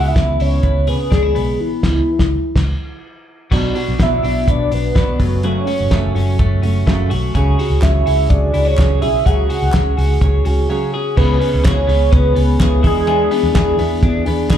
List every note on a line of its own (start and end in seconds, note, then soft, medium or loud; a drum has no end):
0.00 0.12 C#2 medium
0.00 1.59 C#3 medium
0.00 1.14 E3 medium
0.00 0.15 B3 medium
0.00 0.39 E4 medium
0.00 0.86 G#4 medium
0.08 0.43 E5 loud
0.15 0.36 C#2 loud
0.15 0.63 B3 medium
0.15 kick loud
0.15 snare loud
0.15 closed hi-hat medium
0.40 0.60 C#2 loud
0.40 1.10 E4 medium
0.40 0.90 C#5 loud
0.40 open hi-hat medium
0.63 0.90 C#2 loud
0.63 1.35 B3 medium
0.63 kick loud
0.63 closed hi-hat medium
0.87 1.08 C#3 medium
0.87 1.60 G#4 medium
0.87 1.14 B4 medium
0.87 open hi-hat medium
1.11 1.32 C#2 medium
1.11 1.23 D4 medium
1.11 1.62 G#4 medium
1.11 kick loud
1.11 snare loud
1.11 closed hi-hat medium
1.23 1.59 E4 soft
1.35 1.56 B1 medium
1.35 2.10 B3 medium
1.35 open hi-hat medium
1.61 3.04 E4 medium
1.83 2.00 C#2 medium
1.83 kick medium
1.83 snare loud
1.83 crash medium
2.19 2.36 C#2 loud
2.19 kick loud
2.19 snare loud
2.56 2.72 C#2 medium
2.56 kick loud
2.56 snare loud
2.56 crash medium
3.52 3.71 B1 medium
3.52 3.76 B2 medium
3.52 3.76 F#3 medium
3.52 3.76 B3 medium
3.52 3.76 D4 medium
3.52 3.75 F#4 medium
3.52 kick medium
3.52 crash medium
3.76 3.99 B3 medium
3.76 3.99 D4 medium
3.76 3.99 F#4 medium
3.76 open hi-hat medium
3.88 3.98 B1 medium
3.98 4.19 B1 medium
3.98 4.23 B2 medium
3.98 4.23 F#3 medium
3.98 4.24 B3 medium
3.98 4.23 D4 medium
3.98 4.21 F#4 medium
3.98 4.52 E5 loud
3.98 kick loud
3.98 snare loud
3.98 closed hi-hat medium
4.23 4.43 B1 medium
4.23 4.46 B3 soft
4.23 4.47 D4 soft
4.23 4.47 F#4 medium
4.23 open hi-hat medium
4.46 4.67 B1 loud
4.46 4.71 F#3 medium
4.46 4.72 B3 medium
4.46 4.72 D4 medium
4.46 4.70 F#4 medium
4.46 kick loud
4.46 closed hi-hat medium
4.51 4.76 D5 loud
4.71 4.92 B1 medium
4.71 4.95 B3 soft
4.71 4.95 D4 soft
4.71 4.95 F#4 medium
4.71 5.47 B4 loud
4.71 open hi-hat medium
4.95 5.16 B1 loud
4.95 5.19 B2 medium
4.95 5.20 F#3 medium
4.95 5.20 B3 medium
4.95 5.20 D4 medium
4.95 5.18 F#4 medium
4.95 kick loud
4.95 snare loud
4.95 closed hi-hat medium
5.19 5.59 F#1 medium
5.19 5.43 F#2 medium
5.19 5.42 F#3 soft
5.19 5.43 A3 soft
5.19 5.43 C#4 soft
5.19 5.43 F#4 soft
5.19 kick loud
5.19 open hi-hat medium
5.43 5.67 F#2 medium
5.43 5.67 C#3 medium
5.43 5.67 F#3 medium
5.43 5.66 A3 medium
5.43 5.66 C#4 medium
5.43 5.65 F#4 medium
5.43 6.40 C#5 medium
5.43 closed hi-hat medium
5.66 5.90 F#3 soft
5.66 5.90 A3 medium
5.66 5.91 C#4 soft
5.66 5.91 F#4 medium
5.66 open hi-hat medium
5.80 5.90 F#1 loud
5.90 6.11 F#1 medium
5.90 6.15 F#2 medium
5.90 6.15 C#3 medium
5.90 6.15 F#3 medium
5.90 6.15 A3 medium
5.90 6.15 C#4 medium
5.90 6.14 F#4 medium
5.90 kick loud
5.90 snare loud
5.90 closed hi-hat medium
6.15 6.35 F#1 medium
6.15 6.37 F#3 medium
6.15 6.38 A3 medium
6.15 6.39 C#4 medium
6.15 6.39 F#4 medium
6.15 open hi-hat medium
6.39 6.59 F#1 loud
6.39 6.63 F#3 medium
6.39 6.63 A3 medium
6.39 6.63 C#4 medium
6.39 6.62 F#4 medium
6.39 kick loud
6.39 closed hi-hat medium
6.63 6.83 F#1 medium
6.63 6.86 F#3 soft
6.63 6.87 A3 medium
6.63 6.87 C#4 medium
6.63 6.87 F#4 medium
6.63 open hi-hat medium
6.87 7.07 F#1 loud
6.87 7.11 F#2 medium
6.87 7.11 C#3 loud
6.87 7.11 F#3 medium
6.87 7.11 A3 medium
6.87 7.11 C#4 medium
6.87 7.10 F#4 loud
6.87 kick loud
6.87 snare loud
6.87 closed hi-hat medium
7.11 7.31 B1 medium
7.11 7.35 F#3 soft
7.11 7.36 A3 soft
7.11 7.35 C#4 medium
7.11 7.35 F#4 soft
7.11 open hi-hat medium
7.35 7.54 C#2 medium
7.35 7.59 C#3 medium
7.35 7.59 F#3 medium
7.35 7.59 C#4 medium
7.35 7.60 F#4 loud
7.35 7.58 G#4 medium
7.35 kick loud
7.35 closed hi-hat medium
7.59 7.83 C#4 medium
7.59 7.83 F#4 medium
7.59 7.83 G#4 medium
7.59 open hi-hat medium
7.70 7.80 C#2 loud
7.82 8.03 C#2 medium
7.82 8.07 C#3 medium
7.82 8.07 F#3 medium
7.82 8.08 C#4 medium
7.82 8.06 F#4 medium
7.82 8.05 G#4 medium
7.82 8.31 E5 loud
7.82 kick loud
7.82 snare loud
7.82 clap medium
7.82 closed hi-hat medium
8.06 8.26 C#2 medium
8.06 8.30 C#4 soft
8.06 8.30 F#4 soft
8.06 8.30 G#4 medium
8.06 open hi-hat medium
8.29 8.50 C#2 loud
8.29 8.54 F#3 medium
8.29 8.55 C#4 medium
8.29 8.55 F#4 medium
8.29 8.53 G#4 medium
8.29 8.69 D5 loud
8.29 kick loud
8.29 closed hi-hat medium
8.54 8.74 C#2 medium
8.54 8.77 C#4 soft
8.54 8.65 E4 medium
8.54 8.78 F#4 soft
8.54 8.78 G#4 medium
8.54 open hi-hat medium
8.65 9.48 F#4 medium
8.65 9.03 C#5 loud
8.77 8.98 C#2 loud
8.77 9.02 C#3 medium
8.77 9.02 F#3 medium
8.77 9.02 C#4 medium
8.77 9.02 F#4 medium
8.77 9.01 G#4 medium
8.77 kick loud
8.77 snare loud
8.77 clap medium
8.77 closed hi-hat medium
9.01 9.22 B1 medium
9.01 9.26 C#4 soft
9.01 9.27 F#4 soft
9.01 9.26 G#4 soft
9.01 9.28 E5 loud
9.01 open hi-hat medium
9.26 9.46 C#2 medium
9.26 9.50 C#3 medium
9.26 9.50 F#3 medium
9.26 9.50 C#4 medium
9.26 9.50 F#4 loud
9.26 9.48 G#4 medium
9.26 10.69 F#5 loud
9.26 kick loud
9.26 closed hi-hat medium
9.49 9.73 C#4 soft
9.49 9.74 F#4 medium
9.49 9.73 G#4 medium
9.49 open hi-hat medium
9.62 9.72 C#2 medium
9.72 9.94 C#2 medium
9.72 9.97 C#3 medium
9.72 9.98 F#3 medium
9.72 9.98 C#4 medium
9.72 9.97 F#4 medium
9.72 9.96 G#4 medium
9.72 kick loud
9.72 snare loud
9.72 clap medium
9.72 closed hi-hat loud
9.97 10.18 C#2 loud
9.97 10.22 C#4 soft
9.97 10.22 F#4 medium
9.97 10.21 G#4 medium
9.97 open hi-hat medium
10.21 10.41 C#2 loud
10.21 10.45 F#3 medium
10.21 10.46 C#4 medium
10.21 10.46 F#4 medium
10.21 10.45 G#4 medium
10.21 kick loud
10.21 closed hi-hat medium
10.45 10.65 C#2 medium
10.45 10.69 C#4 medium
10.45 10.70 F#4 medium
10.45 10.70 G#4 medium
10.45 open hi-hat medium
10.69 10.93 C#3 medium
10.69 10.94 F#3 medium
10.69 10.94 C#4 medium
10.69 10.93 F#4 medium
10.69 10.92 G#4 loud
10.93 11.17 C#4 soft
10.93 11.18 F#4 medium
10.93 11.17 G#4 medium
11.17 11.37 C#2 loud
11.17 11.41 C#3 medium
11.17 11.41 E3 medium
11.17 11.41 B3 medium
11.17 11.41 C#4 medium
11.17 11.39 G#4 medium
11.17 11.66 B4 loud
11.17 kick loud
11.17 crash medium
11.40 11.65 B3 medium
11.40 11.65 C#4 medium
11.40 11.65 G#4 medium
11.40 open hi-hat medium
11.54 11.63 C#2 loud
11.64 11.85 C#2 medium
11.64 11.88 C#3 medium
11.64 11.89 E3 medium
11.64 11.89 B3 medium
11.64 11.88 C#4 medium
11.64 11.75 F#4 medium
11.64 11.87 G#4 medium
11.64 12.13 C#5 loud
11.64 kick loud
11.64 snare loud
11.64 clap loud
11.64 hi-hat pedal medium
11.64 ride medium
11.75 12.58 G#4 medium
11.88 12.08 C#2 loud
11.88 12.12 B3 soft
11.88 12.13 C#4 medium
11.88 12.12 G#4 medium
11.88 open hi-hat medium
12.12 12.32 C#2 loud
12.12 12.36 E3 medium
12.12 12.37 B3 medium
12.12 12.37 C#4 medium
12.12 12.35 G#4 medium
12.12 12.84 B4 loud
12.12 kick loud
12.12 hi-hat pedal medium
12.12 ride medium
12.36 12.56 C#2 loud
12.36 12.60 B3 soft
12.36 12.60 C#4 soft
12.36 12.60 G#4 medium
12.36 open hi-hat medium
12.60 12.80 C#2 loud
12.60 12.84 C#3 medium
12.60 12.84 E3 medium
12.60 12.85 B3 medium
12.60 12.84 C#4 medium
12.60 12.82 G#4 medium
12.60 kick loud
12.60 snare loud
12.60 clap medium
12.60 hi-hat pedal medium
12.60 ride medium
12.83 13.23 E2 loud
12.83 13.07 E3 medium
12.83 13.07 B3 soft
12.83 13.08 D4 soft
12.83 13.07 G#4 soft
12.83 13.77 G#4 loud
12.83 kick loud
12.83 open hi-hat medium
13.07 13.31 E3 medium
13.07 13.32 B3 medium
13.07 13.32 D4 medium
13.07 13.30 G#4 loud
13.07 hi-hat pedal medium
13.07 ride medium
13.31 13.54 B3 medium
13.31 13.55 D4 medium
13.31 13.56 G#4 medium
13.31 open hi-hat medium
13.43 13.53 E2 medium
13.55 13.75 E2 loud
13.55 13.79 E3 loud
13.55 13.79 B3 medium
13.55 13.78 D4 medium
13.55 13.77 G#4 loud
13.55 kick loud
13.55 snare loud
13.55 clap medium
13.55 hi-hat pedal medium
13.55 ride medium
13.78 13.99 E2 medium
13.78 14.02 B3 medium
13.78 14.02 D4 medium
13.78 14.02 G#4 medium
13.78 open hi-hat medium
14.02 14.23 E2 loud
14.02 14.26 E3 medium
14.02 14.27 B3 medium
14.02 14.25 D4 medium
14.02 14.24 G#4 medium
14.02 kick loud
14.02 hi-hat pedal medium
14.02 ride medium
14.25 14.47 E2 loud
14.25 14.48 B3 medium
14.25 14.49 D4 medium
14.25 14.50 G#4 medium
14.25 open hi-hat medium
14.49 14.57 E2 loud
14.49 14.57 E3 medium
14.49 14.57 B3 medium
14.49 14.57 D4 loud
14.49 14.57 G#4 loud
14.49 kick loud
14.49 snare loud
14.49 clap medium
14.49 hi-hat pedal medium
14.49 ride medium